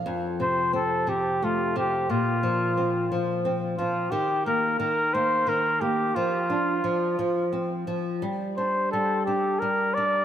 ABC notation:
X:1
M:6/8
L:1/8
Q:3/8=59
K:Fmix
V:1 name="Flugelhorn"
z c A G F G | F4 z F | G B B c B G | F4 z2 |
z c A G B d |]
V:2 name="Nylon-string guitar" clef=bass
F,, C, C C, A, C, | B,, F, C F, C F, | E, B, E, B, E, B, | F, D F, F, C F, |
G, D G, D G, D |]